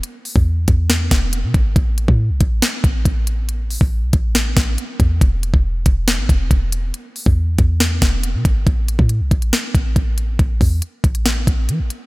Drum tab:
HH |x-o---x-x-x-x-x-|x-x---x-x-x-x-x-|x-o---x-x-x-x-x-|x-x---x-x-x-x-x-|
SD |--------o-o-----|--------o-------|--------o-o-----|--------o-------|
BD |---o--o---o---o-|o--o--o---o-o---|---o--o---o---o-|o--o--o---o-o---|

HH |x-o---x-x-x-x-x-|x-x-x-xxx-x-x-x-|x-o-x-xxx-x-x-x-|
SD |--------o-o-----|--------o-------|--------o-------|
BD |---o--o---o---o-|o--o--o---o-o---|o-o---o---o-----|